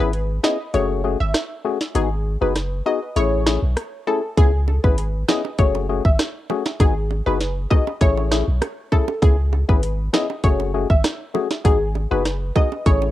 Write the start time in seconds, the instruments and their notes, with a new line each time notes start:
0.00 sub bass G#1, synth stab B3 C#4 E4 G#4, synth pluck B4
0.13 closed hi-hat
0.43 synth stab B3 C#4 E4 G#4, synth pluck D#5, cross-stick, snare
0.74 sub bass F#1, synth stab A3 C#4 F#4 G#4, synth pluck C#5, closed hi-hat
1.04 synth stab A3 C#4 F#4 G#4
1.20 sub bass G#1, synth pluck E5
1.34 cross-stick, snare, closed hi-hat
1.64 synth stab A3 C#4 F#4 G#4
1.81 snare
1.95 sub bass G#1, synth stab B3 D#4 F#4 G#4, synth pluck G#4, closed hi-hat
2.41 sub bass F#1, synth stab B3 D#4 F#4 G#4, synth pluck B4
2.56 cross-stick, snare, closed hi-hat
2.86 synth stab B3 D#4 F#4 G#4, synth pluck D#5
3.16 sub bass A1, synth stab A3 C#4 E4 G#4, synth pluck C#5, closed hi-hat
3.46 synth stab A3 C#4 E4 G#4, cross-stick, snare
3.62 sub bass B1
3.77 cross-stick, closed hi-hat
4.07 synth stab A3 C#4 E4 G#4, synth pluck A4
4.37 sub bass C#2, synth stab B3 C#4 E4 G#4, synth pluck G#4, kick, closed hi-hat
4.68 high bongo
4.84 sub bass G#1, synth stab B3 C#4 E4 G#4, synth pluck B4, kick
4.98 closed hi-hat
5.28 synth stab B3 C#4 E4 G#4, synth pluck D#5, cross-stick, snare, low bongo
5.45 high bongo
5.59 sub bass F#1, synth stab A3 C#4 F#4 G#4, synth pluck C#5, kick, closed hi-hat
5.75 high bongo
5.89 synth stab A3 C#4 F#4 G#4
6.05 sub bass G#1, synth pluck E5, kick
6.19 cross-stick, snare, closed hi-hat, high bongo
6.50 synth stab A3 C#4 F#4 G#4, low bongo
6.66 snare, high bongo
6.80 sub bass G#1, synth stab B3 D#4 F#4 G#4, synth pluck G#4, kick, closed hi-hat
7.11 high bongo
7.26 sub bass F#1, synth stab B3 D#4 F#4 G#4, synth pluck B4
7.41 snare, closed hi-hat
7.71 synth stab B3 D#4 F#4 G#4, synth pluck D#5, kick, low bongo
7.87 high bongo
8.01 sub bass A1, synth stab A3 C#4 E4 G#4, synth pluck C#5, kick, closed hi-hat
8.17 high bongo
8.31 synth stab A3 C#4 E4 G#4, cross-stick, snare
8.48 sub bass B1
8.62 cross-stick, closed hi-hat, high bongo
8.92 synth stab A3 C#4 E4 G#4, synth pluck A4, kick, low bongo
9.08 high bongo
9.22 sub bass C#2, synth stab B3 C#4 E4 G#4, synth pluck G#4, kick, closed hi-hat
9.53 high bongo
9.69 sub bass G#1, synth stab B3 C#4 E4 G#4, synth pluck B4, kick
9.83 closed hi-hat
10.13 synth stab B3 C#4 E4 G#4, synth pluck D#5, cross-stick, snare, low bongo
10.30 high bongo
10.44 sub bass F#1, synth stab A3 C#4 F#4 G#4, synth pluck C#5, kick, closed hi-hat
10.60 high bongo
10.74 synth stab A3 C#4 F#4 G#4
10.90 sub bass G#1, synth pluck E5, kick
11.04 cross-stick, snare, closed hi-hat, high bongo
11.34 synth stab A3 C#4 F#4 G#4, low bongo
11.51 snare, high bongo
11.64 sub bass G#1, synth stab B3 D#4 F#4 G#4, synth pluck G#4, kick, closed hi-hat
11.95 high bongo
12.11 sub bass F#1, synth stab B3 D#4 F#4 G#4, synth pluck B4
12.25 cross-stick, snare, closed hi-hat
12.56 synth stab B3 D#4 F#4 G#4, synth pluck D#5, kick, low bongo
12.72 high bongo
12.86 sub bass A1, synth stab A3 C#4 E4 G#4, synth pluck C#5, kick, closed hi-hat
13.02 high bongo